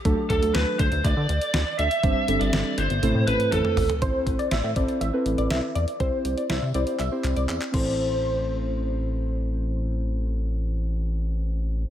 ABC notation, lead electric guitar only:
X:1
M:4/4
L:1/16
Q:1/4=121
K:Ador
V:1 name="Lead electric guitar"
z2 A2 B2 c2 d6 e2- | e3 d3 c4 B2 A3 z | z16 | z16 |
z16 | z16 |]